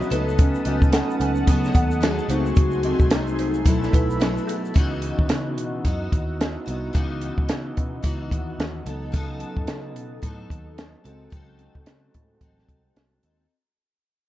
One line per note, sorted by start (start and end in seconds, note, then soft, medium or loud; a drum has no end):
0.00 0.11 C#3 medium
0.00 0.11 F#3 medium
0.00 0.10 B3 medium
0.00 0.11 E4 medium
0.00 0.11 F#4 medium
0.00 2.26 B4 medium
0.00 2.25 D#6 medium
0.00 shaker medium
0.09 0.55 C#2 loud
0.09 0.66 C#3 medium
0.09 2.24 F#3 medium
0.09 1.47 F#3 medium
0.09 2.25 A3 medium
0.09 2.26 B3 medium
0.09 0.66 B3 medium
0.09 0.66 D#4 medium
0.09 0.27 D#4 medium
0.09 2.26 D#4 medium
0.09 0.65 A4 medium
0.09 0.27 B4 loud
0.09 4.72 F#5 medium
0.09 2.28 A5 medium
0.09 closed hi-hat medium
0.09 shaker medium
0.14 2.27 A4 medium
0.29 shaker soft
0.38 0.65 C#4 medium
0.38 kick loud
0.38 closed hi-hat medium
0.38 shaker medium
0.55 shaker soft
0.65 1.01 C#2 medium
0.65 1.47 B3 soft
0.65 0.92 C#4 medium
0.65 1.49 D#4 medium
0.65 0.82 F#4 medium
0.65 1.50 A4 medium
0.65 0.82 D#5 medium
0.65 closed hi-hat medium
0.82 kick medium
0.82 shaker medium
0.92 1.51 C#4 medium
0.92 1.20 A4 medium
0.92 1.19 F#5 medium
0.92 snare loud
0.92 closed hi-hat loud
0.92 shaker medium
1.10 shaker medium
1.20 1.42 C#2 medium
1.20 1.36 B4 medium
1.20 1.36 G#5 medium
1.20 closed hi-hat medium
1.20 shaker soft
1.35 shaker medium
1.47 1.69 C#3 loud
1.47 2.00 F#3 medium
1.47 2.01 B3 medium
1.47 2.05 B3 loud
1.47 2.02 D#4 medium
1.47 2.04 A4 medium
1.47 kick medium
1.47 closed hi-hat medium
1.47 shaker medium
1.64 snare soft
1.64 shaker medium
1.74 2.19 D#2 loud
1.74 2.02 A4 medium
1.74 2.01 F#5 medium
1.74 kick medium
1.74 closed hi-hat medium
1.74 shaker soft
1.91 shaker medium
2.01 2.29 F#3 medium
2.01 2.29 B3 medium
2.01 2.28 D#4 medium
2.01 2.19 F#4 medium
2.01 2.33 G#4 loud
2.01 2.31 A4 medium
2.01 2.18 D#5 medium
2.01 snare loud
2.01 closed hi-hat medium
2.01 shaker medium
2.19 shaker medium
2.27 2.51 C#2 loud
2.27 3.62 F#3 medium
2.27 2.85 F#3 medium
2.27 3.63 A3 medium
2.27 4.73 A3 medium
2.27 2.83 A3 medium
2.27 2.82 C4 medium
2.27 3.63 C4 medium
2.27 3.64 D#4 medium
2.27 2.46 D#4 medium
2.27 2.45 C5 medium
2.27 3.64 G#5 medium
2.27 3.64 C6 medium
2.27 closed hi-hat medium
2.27 shaker medium
2.31 2.85 C#3 medium
2.31 3.12 F#4 loud
2.31 3.65 G#4 medium
2.46 shaker medium
2.56 2.92 C#2 loud
2.56 kick loud
2.56 closed hi-hat medium
2.56 shaker medium
2.71 shaker soft
2.83 3.66 F#3 soft
2.83 3.65 A3 soft
2.83 3.66 C4 medium
2.83 3.01 F#4 medium
2.83 3.00 D#5 medium
2.83 closed hi-hat medium
2.99 3.62 C2 medium
2.99 kick medium
2.99 shaker soft
3.11 3.69 D#4 medium
3.11 3.38 F#4 medium
3.11 3.38 D#5 medium
3.11 snare loud
3.11 closed hi-hat loud
3.11 shaker medium
3.27 shaker soft
3.39 3.55 D#4 medium
3.39 3.55 C5 medium
3.39 closed hi-hat medium
3.39 shaker soft
3.54 shaker medium
3.64 3.88 B1 medium
3.64 4.19 B2 medium
3.64 4.72 F#3 medium
3.64 4.20 F#3 medium
3.64 4.73 A3 medium
3.64 4.21 A3 medium
3.64 4.74 B3 medium
3.64 4.49 E4 medium
3.64 4.22 E4 medium
3.64 4.72 E4 medium
3.64 4.74 E5 medium
3.64 4.74 B5 loud
3.64 kick medium
3.64 closed hi-hat loud
3.64 shaker medium
3.69 4.75 A4 medium
3.83 snare soft
3.83 shaker medium
3.93 4.37 B1 medium
3.93 4.20 D#4 medium
3.93 4.20 B4 medium
3.93 kick medium
3.93 closed hi-hat medium
3.93 shaker soft
4.10 shaker medium
4.20 4.74 B2 medium
4.20 4.75 F#3 medium
4.20 4.76 A3 medium
4.20 4.37 E4 medium
4.20 4.77 E4 medium
4.20 4.36 A4 medium
4.20 snare loud
4.20 closed hi-hat medium
4.20 shaker medium
4.37 shaker medium
4.47 4.63 B3 medium
4.47 4.63 G#4 medium
4.47 closed hi-hat medium
4.47 shaker medium
4.65 shaker soft
4.73 5.11 C#2 medium
4.73 5.84 C#3 medium
4.73 5.85 E3 medium
4.73 8.81 B3 medium
4.73 5.85 B3 medium
4.73 8.82 D#4 medium
4.73 8.81 E4 medium
4.73 kick loud
4.73 closed hi-hat medium
4.78 5.86 D#4 loud
4.78 8.83 F#4 medium
4.78 5.86 F#4 medium
5.02 closed hi-hat medium
5.19 5.28 D#2 medium
5.19 kick medium
5.29 5.57 C#3 medium
5.29 snare loud
5.29 closed hi-hat medium
5.57 5.79 B2 medium
5.57 closed hi-hat medium
5.85 6.07 F#2 medium
5.85 6.69 B3 medium
5.85 6.67 D#4 medium
5.85 6.65 F#4 medium
5.85 kick medium
5.85 closed hi-hat medium
6.12 6.56 D#2 medium
6.12 kick medium
6.12 closed hi-hat medium
6.41 snare loud
6.41 closed hi-hat medium
6.66 6.89 C2 medium
6.66 6.94 B3 soft
6.66 6.95 D#4 soft
6.66 6.94 F#4 medium
6.66 closed hi-hat medium
6.93 7.30 C#2 loud
6.93 8.03 C#3 medium
6.93 8.01 E3 medium
6.93 8.03 B3 medium
6.93 8.04 D#4 medium
6.93 kick loud
6.93 closed hi-hat medium
6.98 8.05 F#4 medium
7.21 closed hi-hat medium
7.38 7.47 C#2 medium
7.38 kick medium
7.49 7.71 C#3 medium
7.49 snare loud
7.49 closed hi-hat medium
7.77 7.99 B2 medium
7.77 kick medium
7.77 closed hi-hat medium
8.03 8.31 C#2 medium
8.03 8.85 E3 medium
8.03 8.88 B3 medium
8.03 8.87 D#4 medium
8.03 8.85 F#4 medium
8.03 kick medium
8.03 closed hi-hat medium
8.31 8.53 D#2 medium
8.31 kick medium
8.31 closed hi-hat medium
8.59 8.80 D#2 medium
8.59 snare loud
8.59 closed hi-hat medium
8.83 9.43 C#2 medium
8.83 10.99 F#3 medium
8.83 11.00 B3 medium
8.83 11.01 D#4 medium
8.83 9.14 D#4 medium
8.83 9.13 A4 medium
8.83 closed hi-hat medium
8.89 9.13 B3 soft
8.89 11.02 A4 medium
9.12 10.22 C#3 medium
9.12 10.21 F#3 medium
9.12 10.22 B3 medium
9.12 10.24 D#4 medium
9.12 kick loud
9.12 closed hi-hat medium
9.17 10.25 A4 medium
9.40 closed hi-hat medium
9.57 9.66 F#2 medium
9.57 kick medium
9.67 9.96 C#3 medium
9.67 snare loud
9.67 closed hi-hat medium
9.96 10.17 B2 medium
9.96 closed hi-hat medium
10.22 10.44 A2 medium
10.22 11.10 F#3 medium
10.22 11.05 B3 medium
10.22 11.06 D#4 medium
10.22 11.04 A4 medium
10.22 kick medium
10.22 closed hi-hat medium
10.50 10.94 D#2 medium
10.50 kick medium
10.50 closed hi-hat medium
10.78 snare loud
10.78 closed hi-hat medium
11.02 11.27 C#2 medium
11.02 13.45 G#3 medium
11.02 13.46 C4 medium
11.02 13.47 F#4 medium
11.02 11.32 A4 medium
11.02 closed hi-hat medium
11.06 11.32 C4 soft
11.06 11.33 D#4 medium
11.06 13.48 A4 medium
11.30 11.67 C#2 medium
11.30 12.45 C#3 medium
11.30 12.40 F#3 medium
11.30 12.42 C4 medium
11.30 12.43 D#4 medium
11.30 kick loud
11.30 closed hi-hat medium
11.35 12.43 A4 medium
11.59 closed hi-hat medium
11.75 11.84 C#2 medium
11.75 kick medium
11.86 12.08 C#3 medium
11.86 snare loud
11.86 closed hi-hat medium
12.14 12.36 A2 medium
12.14 kick medium
12.14 closed hi-hat medium
12.41 12.63 A1 medium
12.41 13.30 F#3 medium
12.41 13.26 C4 medium
12.41 13.24 D#4 medium
12.41 13.23 A4 medium
12.41 kick medium
12.41 closed hi-hat medium
12.59 snare soft
12.69 12.90 C2 medium
12.69 kick medium
12.69 closed hi-hat medium
12.96 13.18 C2 medium
12.96 snare loud
12.96 closed hi-hat medium
13.23 13.45 D#2 medium
13.23 13.52 C4 soft
13.23 13.51 D#4 soft
13.23 13.51 A4 soft
13.23 closed hi-hat medium